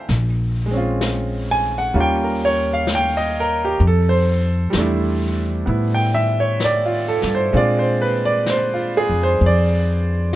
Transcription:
0.00 0.10 D4 medium
0.00 0.10 F5 medium
0.00 0.10 G5 loud
0.00 0.10 A5 medium
0.09 1.90 A#1 medium
0.09 brush sweep soft
0.09 snare soft
0.66 1.92 G#3 medium
0.71 1.94 C4 soft
0.71 1.94 C#4 soft
0.77 1.94 F4 medium
1.01 brush sweep soft
1.01 snare soft
1.01 hi-hat pedal medium
1.51 1.72 G#5 loud
1.78 1.93 F#5 medium
1.94 3.76 D#2 medium
1.94 3.80 G3 medium
1.94 3.80 A#3 medium
1.94 3.80 C#4 soft
1.94 3.81 F4 medium
1.94 brush sweep soft
2.01 2.27 G5 medium
2.24 2.54 A#4 medium
2.45 2.65 C#5 medium
2.73 2.87 F5 medium
2.87 brush sweep soft
2.87 snare medium
2.87 hi-hat pedal medium
2.95 3.21 G5 loud
3.17 3.47 D#5 medium
3.40 3.59 A#4 medium
3.65 3.79 G4 medium
3.80 4.69 F2 loud
3.80 brush sweep soft
3.87 4.13 A4 medium
4.09 4.28 C5 medium
4.70 5.62 E2 medium
4.70 7.51 G3 medium
4.70 7.53 A3 medium
4.70 brush sweep soft
4.70 snare medium
4.70 hi-hat pedal medium
4.77 7.53 D4 medium
4.77 5.67 E4 medium
5.66 7.18 A2 medium
5.66 7.52 B3 soft
5.66 7.54 E4 medium
5.66 brush sweep soft
5.94 6.26 G5 medium
6.14 6.36 E5 loud
6.40 6.57 C#5 medium
6.60 brush sweep soft
6.60 snare medium
6.60 hi-hat pedal medium
6.64 6.92 D5 loud
6.86 7.18 F4 medium
7.08 7.30 A4 medium
7.22 7.51 G2 medium
7.22 snare soft
7.35 7.51 C5 medium
7.52 9.05 A#2 loud
7.52 10.36 G#3 medium
7.52 10.36 C4 medium
7.52 10.36 D4 medium
7.52 8.72 F4 medium
7.52 brush sweep soft
7.57 7.85 D5 loud
7.79 8.12 C5 medium
8.01 8.23 B4 medium
8.25 8.43 D5 loud
8.46 8.78 C5 medium
8.46 brush sweep soft
8.46 snare medium
8.46 hi-hat pedal medium
8.74 9.06 F4 medium
8.97 9.18 G#4 medium
9.10 9.38 F2 medium
9.23 9.39 C5 medium
9.39 10.36 F2 medium
9.39 brush sweep soft
9.46 9.82 D5 medium

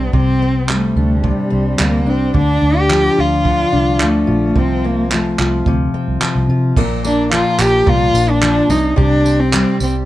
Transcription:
0.00 0.12 C3 medium
0.00 0.15 C4 medium
0.00 0.16 D4 soft
0.13 0.92 C2 medium
0.13 1.22 C3 medium
0.13 0.66 C4 medium
0.13 kick medium
0.42 1.49 C4 soft
0.69 1.77 G3 medium
0.69 1.28 A3 medium
0.69 clap medium
0.96 1.30 D2 medium
0.96 2.06 D4 medium
1.23 2.40 C3 medium
1.23 1.83 G3 medium
1.23 kick loud
1.50 1.75 C2 medium
1.50 2.40 C4 soft
1.78 2.06 D2 medium
1.78 2.39 G3 medium
1.78 clap loud
1.82 2.11 A#3 medium
2.06 2.29 C2 medium
2.06 2.36 C4 medium
2.06 2.61 D4 medium
2.34 2.57 D2 medium
2.34 3.44 D3 medium
2.34 2.80 D4 loud
2.34 kick medium
2.61 3.07 D2 medium
2.61 3.71 D4 medium
2.79 3.21 G4 loud
2.90 4.00 F3 medium
2.90 clap medium
3.17 3.63 D2 medium
3.17 4.27 F4 medium
3.17 4.04 F4 loud
3.45 4.55 D3 medium
3.45 kick loud
3.72 4.01 C2 medium
3.72 4.61 D4 medium
4.00 4.24 D2 medium
4.00 5.12 F3 medium
4.00 4.59 A3 medium
4.00 clap loud
4.27 4.51 A#1 medium
4.27 5.39 F4 medium
4.56 5.35 C2 medium
4.56 5.66 C3 medium
4.56 4.87 C4 loud
4.56 kick medium
4.84 5.15 A#3 medium
4.84 5.93 C4 medium
5.11 6.21 F3 medium
5.11 5.68 A3 medium
5.11 clap medium
5.39 5.61 C2 medium
5.39 6.49 F4 medium
5.39 clap medium
5.66 5.89 D2 medium
5.66 6.83 C3 medium
5.66 kick loud
5.94 6.82 C4 medium
5.94 muted fingered electric bass stroke soft
6.08 6.19 C2 medium
6.21 6.82 F3 medium
6.21 clap loud
6.35 6.47 C2 medium
6.48 6.71 C3 medium
6.48 6.82 F4 soft
6.76 7.42 A#1 medium
6.76 7.85 A#2 medium
6.76 8.76 A#4 medium
6.76 kick loud
6.76 crash medium
7.04 8.75 A#3 medium
7.04 7.30 D4 medium
7.04 tambourine medium
7.32 8.41 F3 medium
7.32 7.62 F4 medium
7.32 clap loud
7.59 7.82 A#1 loud
7.59 7.91 G4 loud
7.59 clap medium
7.59 tambourine medium
7.86 8.10 C2 medium
7.86 8.69 A#2 medium
7.86 8.31 F4 loud
7.86 kick loud
8.14 8.59 A#1 medium
8.14 8.99 D4 medium
8.14 tambourine medium
8.30 8.72 D4 loud
8.42 8.75 F3 medium
8.42 clap loud
8.69 8.92 C2 loud
8.69 8.95 C3 medium
8.69 8.97 D#4 medium
8.69 tambourine medium
8.96 9.63 C2 loud
8.96 10.05 C3 medium
8.96 9.41 D4 loud
8.96 10.05 G4 medium
8.96 kick loud
9.25 10.05 C4 medium
9.25 tambourine medium
9.40 9.81 C4 medium
9.53 10.05 G3 medium
9.53 clap loud
9.80 10.03 C2 loud
9.80 9.94 C4 medium
9.80 tambourine medium

